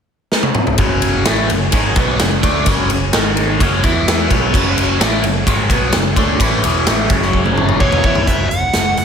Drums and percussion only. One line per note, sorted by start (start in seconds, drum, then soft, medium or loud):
0.32 snare medium
0.43 high tom medium
0.55 mid tom medium
0.67 floor tom medium
0.78 kick loud
0.78 ride medium
1.02 ride medium
1.25 snare loud
1.25 ride loud
1.50 ride medium
1.72 kick loud
1.72 ride loud
1.96 kick loud
1.96 ride medium
2.20 snare loud
2.20 ride loud
2.43 kick loud
2.43 ride medium
2.66 kick loud
2.66 ride loud
2.90 ride medium
3.13 snare loud
3.13 ride medium
3.37 ride medium
3.60 kick loud
3.60 ride medium
3.84 kick loud
3.84 ride medium
4.08 snare loud
4.08 ride loud
4.31 kick loud
4.31 ride medium
4.54 kick loud
4.54 crash loud
4.78 ride medium
5.01 snare loud
5.01 ride loud
5.24 ride medium
5.47 kick loud
5.47 ride medium
5.70 kick loud
5.70 ride medium
5.93 snare loud
5.93 ride loud
6.16 kick loud
6.16 ride medium
6.40 kick loud
6.40 ride loud
6.64 ride medium
6.87 snare loud
6.87 ride loud
7.10 kick loud
7.10 ride medium
7.22 snare soft
7.33 kick medium
7.46 high tom medium
7.58 mid tom medium
7.69 mid tom medium
7.80 kick medium
7.92 mid tom medium
8.04 kick loud
8.15 floor tom medium
8.27 kick loud
8.27 closed hi-hat medium
8.51 closed hi-hat medium
8.73 snare loud
8.73 closed hi-hat medium
8.97 closed hi-hat medium